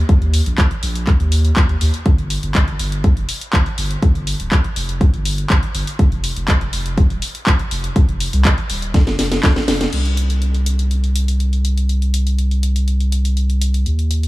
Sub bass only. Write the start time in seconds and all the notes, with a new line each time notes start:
0.09 D#2
0.46 A#1
0.83 A#1
1.20 D#2
1.57 D#2
1.81 D#2
2.06 G1
2.43 G1
2.79 G1
3.17 F1
3.53 G1
3.78 G1
4.03 G1
4.40 D1
4.76 F1
5.14 G1
5.50 G1
5.75 G1
5.99 F1
6.37 F1
6.73 F1
7.10 D#1
7.47 F1
7.71 F1
7.96 F1
8.33 C2
8.70 D#1
9.07 F1
9.43 F1
9.68 F1
9.93 C2
13.86 D#2